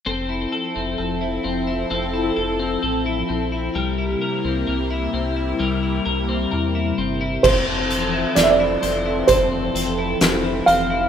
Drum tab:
CC |--------|--------|x-------|
HH |--------|--------|-xxxxxxx|
SD |--------|--------|--o---o-|
BD |--------|--------|o---o---|